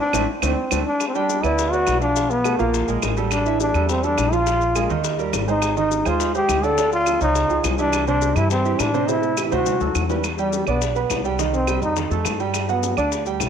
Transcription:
0.00 D4
0.13 A1 A3 C4 E4, low bongo, claves, maracas
0.42 D2 A3 C4 D4, low bongo, claves, maracas
0.71 D2 A3 C4 D4, low bongo, claves, maracas
0.86 D4
1.00 high bongo, claves, maracas
1.08 C4
1.15 G3 D4 G4 G5, high bongo, maracas
1.29 high bongo, maracas
1.43 D2 B3 E4 B4 D5, high bongo, claves, maracas
1.58 high bongo, maracas
1.72 B3 F#4 B4 D5, maracas
1.86 B1, high bongo, low bongo, claves, maracas
2.01 F3 D4 F4 F5, high bongo, maracas
2.16 F3 F4 F5, high bongo, maracas
2.30 B3, maracas
2.44 A3 A4 B4, high bongo, claves, maracas
2.59 A#1 F3 A#3 F4 F5, high bongo, maracas
2.74 high bongo, maracas
2.88 A#1 G#3 G#4 A#4, high bongo, maracas
3.02 A1, high bongo, low bongo, claves, maracas
3.17 G3 G4 A4, high bongo, maracas
3.31 D4, high bongo, claves, maracas
3.46 E3 E4 E5, high bongo, maracas
3.60 D4, high bongo, maracas
3.74 E2 G3 G4 A4, high bongo, claves, maracas
3.89 C4, high bongo, maracas
4.03 G3 D4 G4 A4, maracas
4.18 A#1, high bongo, low bongo, claves, maracas
4.32 F3 F4 F5, high bongo, maracas
4.47 F3 F4 F5, high bongo, maracas
4.61 maracas
4.75 G#3 G#4 A#4, high bongo, claves, maracas
4.90 D#2 D#3 D#4 D#5, high bongo, maracas
5.04 high bongo, maracas
5.19 G3 G4 A#4, high bongo, maracas
5.33 G#1, high bongo, low bongo, claves, maracas
5.48 G#3 D#4 G#4 C5, high bongo, maracas
5.62 high bongo, claves, maracas
5.77 D#3 D#4 D#5, high bongo, maracas
5.91 high bongo, maracas
6.05 D#2 G#3 F4 G#4 C5, high bongo, claves, maracas
6.20 high bongo, maracas
6.34 G#3 G4 G#4 C5, maracas
6.49 D2, high bongo, low bongo, claves, maracas
6.63 D3 D4 A4 D5, high bongo, maracas
6.77 D3 D4 D5, high bongo, maracas
6.92 F4, maracas
7.06 F3 F4 A4, high bongo, claves, maracas
7.21 C#2 C#3 C#4 D#4 C#5, high bongo, maracas
7.35 high bongo, maracas
7.50 C#2 F3 F4 G#4, high bongo, maracas
7.64 C2, high bongo, low bongo, claves, maracas
7.78 E3 D4 E4 G4, high bongo, maracas
7.93 high bongo, claves, maracas
8.07 C3 C4 D4 C5, high bongo, maracas
8.22 high bongo, maracas
8.36 G2 E3 E4 G4, high bongo, claves, maracas
8.51 C4, high bongo, maracas
8.65 E3 E4 G4, maracas
8.79 A2 D4, high bongo, low bongo, claves, maracas
8.94 C3 C4 C5, high bongo, maracas
9.08 C3 C4 E4 C5, high bongo, maracas
9.23 maracas
9.37 E3 E4 G4, high bongo, claves, maracas
9.46 E4
9.52 D2 C3 C4 F#4 C5, low bongo, maracas
9.66 low bongo, maracas
9.80 D2 F#3 F#4 A4, low bongo, maracas
9.95 E2, low bongo, claves, maracas
10.10 G3 G4 B4, low bongo, maracas
10.24 high bongo, claves, maracas
10.38 G3 G4 G5, high bongo, maracas
10.53 high bongo, maracas
10.67 B1 B3 D4 D5 D6, high bongo, claves, maracas
10.81 high bongo, maracas
10.96 B3 B4 B5, maracas
11.10 C2, high bongo, low bongo, claves, maracas
11.25 G3 G4 G5, high bongo, maracas
11.39 D#3 D#4 D#5, high bongo, maracas
11.54 C4, maracas
11.67 G3 G4 G5, high bongo, claves, maracas
11.82 F2 D#4, high bongo, maracas
11.96 D#3 D#4 D#5, high bongo, maracas
12.11 F2 A3 A4 A5, high bongo, maracas
12.25 G2, high bongo, low bongo, claves, maracas
12.40 G3 G4 G5, high bongo, maracas
12.54 high bongo, claves, maracas
12.69 F#3 B3 F#4 F#5, high bongo, maracas
12.83 high bongo, maracas
12.97 D2 D4 D5 D6, high bongo, claves, maracas
13.12 high bongo, maracas
13.26 G3 G4 G5, maracas
13.40 B1, high bongo, low bongo, claves, maracas

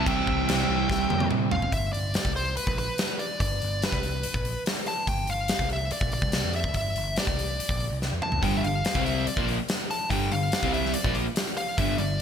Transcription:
Already playing: C3 E3 G3 C4 E4
0.06 C2 E5 G5, kick, crash
0.27 C2, kick
0.47 C2 C3 G3 C4, snare, crash
0.69 C2
0.90 C2, kick, snare
1.10 F2, high tom
1.20 high tom
1.31 C3, mid tom
1.51 F1 F5, floor tom
1.62 floor tom
1.72 G1 E5, kick, open hi-hat
1.93 G1 D5, open hi-hat
2.14 snare, open hi-hat
2.25 C2, kick
2.36 C5, open hi-hat
2.57 B4, muted picked electric bass stroke, open hi-hat
2.67 A#1, kick
2.78 B4, open hi-hat
2.98 snare, open hi-hat
3.19 D5, open hi-hat
3.40 G1 D5, kick, open hi-hat
3.62 G1, open hi-hat
3.82 B4, snare, open hi-hat
3.92 C2, kick
4.03 open hi-hat
4.23 muted picked electric bass stroke, open hi-hat
4.34 A#1, kick
4.45 open hi-hat
4.66 snare, open hi-hat
4.86 A5, open hi-hat
5.07 G1 G5, kick, open hi-hat
5.27 G1 F5, open hi-hat
5.48 snare, open hi-hat
5.59 C2, kick
5.70 E5, open hi-hat
5.91 D5, muted picked electric bass stroke, open hi-hat
6.01 A#1, kick
6.12 D5, open hi-hat
6.22 C2, kick
6.32 snare, open hi-hat
6.45 F2
6.53 E5, open hi-hat
6.64 C#2, kick
6.74 G1 E5, kick, open hi-hat
6.96 G1, open hi-hat
7.16 D5, snare, open hi-hat
7.27 C2, kick
7.39 open hi-hat
7.59 muted picked electric bass stroke, open hi-hat
7.69 A#1, kick
7.80 open hi-hat
7.92 C2
8.02 snare
8.12 F2
8.22 A5, mid tom
8.32 C#2, floor tom
8.42 G1 G2 D3 G3 G5, kick, open hi-hat
8.57 E5
8.63 G1 G2 D3 F5, open hi-hat
8.85 snare, open hi-hat
8.95 C2 C3 G3 C4, kick
9.05 E5, open hi-hat
9.27 D5, muted overdriven electric guitar stroke, muted picked electric bass stroke, open hi-hat
9.37 A#1 A#2 F3 A#3, kick
9.48 open hi-hat
9.69 snare, open hi-hat
9.91 A5, open hi-hat
10.10 G1 G2 D3 G3 G5, kick, open hi-hat
10.32 G1 G2 D3 F5, open hi-hat
10.52 snare, open hi-hat
10.62 C2 C3 G3 C4, kick
10.73 E5, open hi-hat
10.86 snare
10.94 D5, muted picked electric bass stroke, muted overdriven electric guitar stroke, open hi-hat
11.04 A#1 A#2 F3 A#3, kick
11.15 open hi-hat
11.36 snare, open hi-hat
11.57 F5, open hi-hat
11.78 G1 G2 D3 G3 E5, kick, open hi-hat
11.98 G1 G2 D3 D5, open hi-hat

